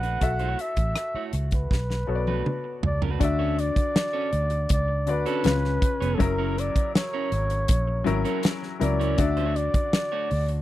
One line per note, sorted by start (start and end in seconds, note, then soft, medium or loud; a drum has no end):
0.00 0.17 A#1 medium
0.00 0.23 B3 medium
0.00 0.20 D4 soft
0.00 0.21 F#4 medium
0.00 0.20 F#4 soft
0.00 0.22 A4 medium
0.00 0.19 B4 soft
0.00 0.23 D5 medium
0.00 0.63 F#5 loud
0.00 closed hi-hat soft
0.04 0.20 A3 soft
0.21 0.54 B1 medium
0.21 1.29 F#4 medium
0.21 1.29 A4 medium
0.21 1.30 E5 medium
0.21 muted clean electric guitar stroke soft
0.21 kick medium
0.21 closed hi-hat medium
0.39 0.58 A3 medium
0.39 0.58 E4 medium
0.39 0.58 F#4 medium
0.39 0.58 C#5 medium
0.39 closed hi-hat soft
0.59 1.27 E5 medium
0.59 muted clean electric guitar stroke soft
0.59 closed hi-hat medium
0.77 0.93 A1 medium
0.77 muted clean electric guitar stroke soft
0.77 kick medium
0.77 closed hi-hat medium
0.96 muted clean electric guitar stroke soft
0.96 cross-stick loud
0.96 closed hi-hat medium
1.14 1.33 A3 soft
1.14 1.33 E4 medium
1.14 1.33 F#4 medium
1.14 1.33 C#5 medium
1.14 muted fingered electric bass stroke soft
1.33 1.66 C#2 medium
1.33 muted clean electric guitar stroke soft
1.33 closed hi-hat medium
1.51 2.80 B4 medium
1.51 muted clean electric guitar stroke soft
1.51 kick medium
1.51 closed hi-hat soft
1.71 2.04 B1 medium
1.71 muted clean electric guitar stroke soft
1.71 kick medium
1.71 snare medium
1.90 muted clean electric guitar stroke soft
1.90 snare soft
2.07 2.41 B1 medium
2.07 2.89 B3 medium
2.07 2.89 F#4 medium
2.07 2.89 A4 medium
2.07 2.15 C#5 medium
2.15 2.93 D5 medium
2.27 2.45 A3 medium
2.27 2.45 D4 medium
2.27 2.46 F#4 medium
2.27 2.46 B4 medium
2.27 high tom medium
2.46 muted clean electric guitar stroke soft
2.46 mid tom medium
2.64 muted clean electric guitar stroke soft
2.83 3.16 C#2 medium
2.83 3.01 D5 medium
2.83 floor tom medium
3.02 3.20 A3 soft
3.02 3.20 D4 soft
3.02 3.19 F#4 medium
3.02 3.21 B4 medium
3.02 floor tom medium
3.19 3.70 D2 loud
3.19 4.28 D3 medium
3.19 4.28 D4 medium
3.19 4.28 F#4 medium
3.19 4.28 D5 medium
3.19 3.61 E5 loud
3.19 muted clean electric guitar stroke soft
3.19 kick medium
3.19 closed hi-hat medium
3.39 3.57 C#4 medium
3.39 3.57 F#4 medium
3.39 3.57 A4 medium
3.39 3.57 C#5 medium
3.58 4.71 D5 loud
3.58 muted clean electric guitar stroke soft
3.58 closed hi-hat medium
3.76 muted fingered electric bass stroke soft
3.76 muted clean electric guitar stroke soft
3.76 kick medium
3.76 closed hi-hat medium
3.95 muted clean electric guitar stroke soft
3.95 snare loud
3.95 closed hi-hat medium
4.13 4.31 C#4 medium
4.13 4.31 F#4 medium
4.13 4.31 A4 medium
4.13 4.32 C#5 medium
4.32 4.65 D2 medium
4.32 muted clean electric guitar stroke soft
4.32 closed hi-hat medium
4.50 muted clean electric guitar stroke medium
4.50 closed hi-hat soft
4.69 5.08 C#2 medium
4.69 5.12 D5 medium
4.69 muted clean electric guitar stroke soft
4.69 kick loud
4.69 closed hi-hat medium
4.88 muted clean electric guitar stroke soft
5.06 5.24 D2 medium
5.06 5.44 D3 medium
5.06 5.45 D4 medium
5.06 5.45 F#4 medium
5.06 6.16 B4 medium
5.06 5.46 D5 medium
5.06 closed hi-hat medium
5.26 5.44 C#4 medium
5.26 5.44 F#4 medium
5.26 5.45 A4 medium
5.26 5.44 C#5 medium
5.26 closed hi-hat soft
5.44 5.78 C#2 loud
5.44 6.04 C#3 medium
5.44 6.05 C#4 medium
5.44 6.05 F4 medium
5.44 6.05 B4 medium
5.44 muted clean electric guitar stroke soft
5.44 snare medium
5.44 closed hi-hat medium
5.63 muted clean electric guitar stroke soft
5.63 snare soft
5.82 kick loud
5.82 closed hi-hat medium
6.00 6.18 F1 medium
6.00 6.19 B3 medium
6.00 6.20 F4 medium
6.00 6.20 G#4 medium
6.00 6.19 C#5 medium
6.00 closed hi-hat soft
6.15 7.27 C#3 medium
6.15 7.26 F#3 medium
6.15 6.23 A4 medium
6.19 6.69 F#1 loud
6.19 7.27 E4 medium
6.19 7.28 A#4 loud
6.19 6.61 A#4 medium
6.19 muted clean electric guitar stroke soft
6.19 kick medium
6.19 closed hi-hat medium
6.38 6.56 C#4 medium
6.38 6.56 E4 medium
6.38 6.57 A#4 medium
6.38 6.56 C#5 medium
6.57 6.95 D5 medium
6.57 muted clean electric guitar stroke soft
6.57 closed hi-hat medium
6.76 muted fingered electric bass stroke soft
6.76 muted clean electric guitar stroke soft
6.76 kick medium
6.76 closed hi-hat medium
6.95 8.40 C#5 medium
6.95 muted clean electric guitar stroke soft
6.95 snare loud
6.95 closed hi-hat medium
7.13 7.31 C#4 medium
7.13 7.31 E4 medium
7.13 7.31 A#4 medium
7.13 7.31 C#5 medium
7.32 7.65 G#1 medium
7.32 muted clean electric guitar stroke soft
7.32 closed hi-hat medium
7.50 muted clean electric guitar stroke medium
7.50 closed hi-hat soft
7.68 8.02 A#1 medium
7.68 muted clean electric guitar stroke soft
7.68 kick loud
7.68 closed hi-hat loud
7.87 muted clean electric guitar stroke soft
8.04 8.23 G#1 medium
8.04 8.59 F#3 medium
8.04 8.60 C#4 medium
8.04 8.60 E4 medium
8.04 8.61 A#4 loud
8.04 closed hi-hat medium
8.25 8.42 C#4 medium
8.25 8.43 E4 medium
8.25 8.43 A#4 medium
8.25 8.43 C#5 medium
8.25 closed hi-hat soft
8.43 muted clean electric guitar stroke soft
8.43 snare loud
8.43 closed hi-hat medium
8.62 muted clean electric guitar stroke soft
8.62 snare soft
8.79 9.14 C#2 medium
8.79 9.07 F#3 medium
8.79 9.08 C#4 medium
8.79 9.08 E4 medium
8.79 9.08 A#4 medium
8.79 9.21 D5 medium
8.79 closed hi-hat medium
9.00 9.18 C#4 medium
9.00 9.19 E4 medium
9.00 9.18 A#4 medium
9.00 9.18 C#5 medium
9.00 closed hi-hat soft
9.17 9.68 D2 medium
9.17 10.26 D3 medium
9.17 10.26 D4 medium
9.17 10.26 F#4 medium
9.17 10.27 D5 loud
9.17 9.58 E5 medium
9.17 kick medium
9.17 closed hi-hat medium
9.37 9.54 A3 medium
9.37 9.55 D4 medium
9.37 9.55 F#4 medium
9.37 9.55 C#5 medium
9.37 closed hi-hat soft
9.55 10.62 D5 medium
9.55 muted clean electric guitar stroke soft
9.55 closed hi-hat medium
9.74 muted clean electric guitar stroke soft
9.74 muted fingered electric bass stroke soft
9.74 kick medium
9.74 closed hi-hat medium
9.93 muted clean electric guitar stroke soft
9.93 snare loud
9.93 closed hi-hat medium
10.12 10.30 A3 medium
10.12 10.30 D4 medium
10.12 10.30 F#4 medium
10.12 10.30 C#5 medium
10.31 10.62 D2 medium
10.31 muted clean electric guitar stroke soft
10.31 open hi-hat medium
10.48 muted clean electric guitar stroke soft
10.48 closed hi-hat medium